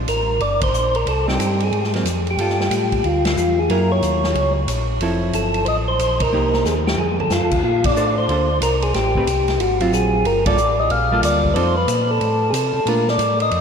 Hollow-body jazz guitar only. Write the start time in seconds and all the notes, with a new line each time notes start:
1.28 G3 C4 D#4
1.95 F#3 A#3 C4
2.39 G3 F4 A4
3.70 F#3 A#3 E4 G#4
5.01 F3 C4 E4 A4
6.33 A#3 D#4 G4
7.97 D4 A4 C5
8.30 A#3 D4 A4 C5
9.16 A3 C4 G4 B4
9.81 F#3 C4 F4
10.46 G3 A#3 F4 A4
11.12 G3 A#3 F4 A4
11.55 F3 C4 D#4 A4
12.88 A3 D4 F4